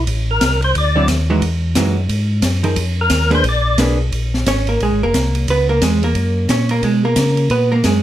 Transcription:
0.07 A1, kick, ride
0.31 A#4
0.41 C2, kick, snare, hi-hat pedal, ride
0.62 C5, ride
0.75 D2 D5, kick, ride
0.96 D3 F#3 C4 E4
1.08 D#2, kick, snare, hi-hat pedal, ride
1.30 E3 G#3 D#4 F#4
1.42 E2, kick, ride
1.75 F#2 E3 G#3 D#4 F#4, kick, snare, hi-hat pedal, ride
2.09 G#2, kick, ride
2.42 F#2, kick, snare, hi-hat pedal, ride
2.63 F3 D#4 G#4 A#4, ride
2.76 F2, kick, ride
3.01 A#4
3.10 D#2, kick, snare, hi-hat pedal, ride
3.31 A#3 D4 G#4 B4, ride
3.35 C5
3.44 A#1, kick, ride
3.49 D5
3.78 B1 A#3 D4 G#4 B4, kick, snare, hi-hat pedal, ride
4.12 A#1, kick, ride
4.34 snare
4.46 G#1 C#4 C#5, kick, snare, hi-hat pedal, ride
4.67 A#3 A#4, ride
4.80 A#1 G#3 G#4, kick, ride
4.91 G#1
5.03 F1 A#3 A#4
5.14 C2, kick, snare, hi-hat pedal, ride
5.35 ride
5.48 C#2 B3 B4, kick, ride
5.69 A#3 A#4
5.82 E2 G#3 G#4, kick, snare, hi-hat pedal, ride
6.03 A#3 A#4, ride
6.15 F#2, kick, ride
6.49 A#2 C#4 C#5, kick, snare, hi-hat pedal, ride
6.69 A#3 A#4, ride
6.83 B2 G#3 G#4, kick, ride
7.05 A#3 A#4
7.16 C#3, kick, snare, hi-hat pedal, ride
7.37 ride
7.50 A#2 B3 B4, kick, ride
7.72 A#3 A#4
7.84 F#2 G#3 G#4, kick, snare, hi-hat pedal, ride

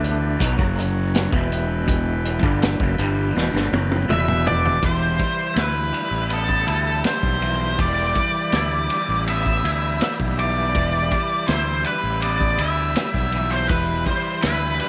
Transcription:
Already playing: D2 D3 E3 A3 B3 D4 B4 G5
0.04 closed hi-hat
0.39 B1 B2 F#3, kick, closed hi-hat
0.57 F#1 F#2 C#3 F#3 F#4 C#5, kick
0.79 closed hi-hat
1.15 snare, closed hi-hat
1.31 E1 E2 B2 E3 B3 B4 G5, kick
1.52 closed hi-hat
1.88 kick, closed hi-hat
2.25 closed hi-hat
2.43 G1 G2 D3 G3, kick
2.62 snare, closed hi-hat
2.80 F#1 F#2 C#3, kick
2.98 G1 G2 D3 G3, closed hi-hat
3.35 E1 E2 B2, snare
3.53 G1 G2 D3, snare
3.72 F#1 F#2 C#3 F#3, high tom
3.91 high tom
4.08 E1 E2 B2 E3 E5, mid tom
4.28 mid tom
4.47 D5, floor tom
4.65 floor tom
4.82 E1 E3 G3 G4 C5 B5, kick, ride
5.19 G3, kick, ride
5.54 D2 E4, snare, ride
5.60 B4
5.93 G3, ride
6.11 A1
6.29 B3 A4, ride
6.49 kick
6.66 D2 E4, ride
7.04 G3 C5, snare, ride
7.23 B1, kick
7.41 E3, ride
7.79 E1 E3 D5, kick, ride
8.15 G3, kick, ride
8.52 D2 E4, snare, ride
8.89 G3, ride
9.09 A1
9.27 B3 E5, ride
9.46 kick
9.64 D2 E4, ride
10.01 G3 E5, snare, ride
10.20 B1, kick
10.38 E3 D5, ride
10.75 E1 E3, kick, ride
11.11 G3, kick, ride
11.48 D2 E4 C5, snare, ride
11.84 G3 B4, ride
12.03 A1
12.22 B3 D5, ride
12.41 kick
12.58 D2 E4 E5, ride
12.96 G3, snare, ride
13.14 B1, kick, snare
13.32 E3, ride
13.51 C5
13.69 E1 E3 B4, kick, ride
14.06 G3 C5, kick, ride
14.42 D2 B4, snare, ride
14.47 E4
14.80 G3, ride

